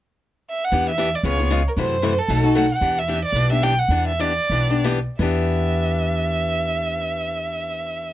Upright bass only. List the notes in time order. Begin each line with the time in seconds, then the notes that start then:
0.72 E2
1.23 C#2
1.77 F#2
2.28 B1
2.81 E2
3.32 B1
3.88 E2
4.50 B1
5.19 E2